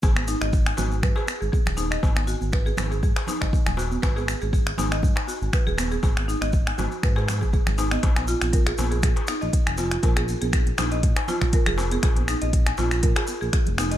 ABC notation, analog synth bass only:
X:1
M:4/4
L:1/16
Q:"Swing 16ths" 1/4=120
K:G#dor
V:1 name="Analog synth bass" clef=bass
G,,,2 z G,,,2 z G,,,2 G,, z2 G,,, z D,,,2 z | G,,,2 z G,,,2 z G,,,2 G,, z2 G,,, z D,,,2 z | G,,,2 z G,,,2 z G,,,2 G,, z2 G,,, z D,,,2 z | G,,,2 z G,,,2 z G,,, z G,,3 G,,, z G,,,2 z |
A,,,2 z A,,,2 z A,,,2 A,, z2 A,,, z E,,,2 z | A,,,2 z A,,,2 z A,,,2 A,, z2 A,,, z E,,,2 z | A,,,2 z A,,,2 z A,,,2 A,, z2 A,,, z E,,,2 z |]